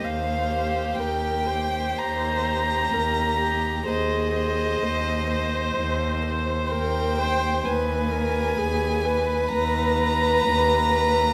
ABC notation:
X:1
M:4/4
L:1/8
Q:1/4=64
K:Eb
V:1 name="Violin"
f2 g2 b4 | e4- e z g2 | a4 b4 |]
V:2 name="Violin"
z G2 G2 G2 G | c c2 c2 c2 c | z _c2 c2 c2 c |]
V:3 name="Viola"
c2 B c3 B G | A2 c4 B c | _c B A c4- c |]
V:4 name="Cello" clef=bass
E,,2 E,,2 E,,2 E,,2 | E,,2 E,,2 E,,2 E,,2 | E,,2 E,,2 E,,2 E,,2 |]